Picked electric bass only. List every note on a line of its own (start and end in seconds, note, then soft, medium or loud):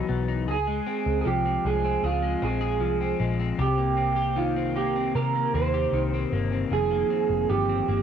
0.09 0.48 B1 medium
0.48 0.79 C#2 loud
1.06 1.22 C#2 medium
1.26 1.57 C2 medium
1.65 1.96 C2 medium
2.03 2.34 C#2 medium
2.43 2.81 A#1 loud
2.81 3.12 C2 loud
3.20 3.51 A#1 medium
3.59 5.11 C2 loud
5.15 5.46 C3 loud
5.54 5.85 D#2 medium
5.93 6.24 C2 medium
6.32 6.63 G1 medium
6.71 7.02 F1 loud
7.29 7.45 F1 medium
7.50 7.80 G1 loud
7.88 8.02 G1 medium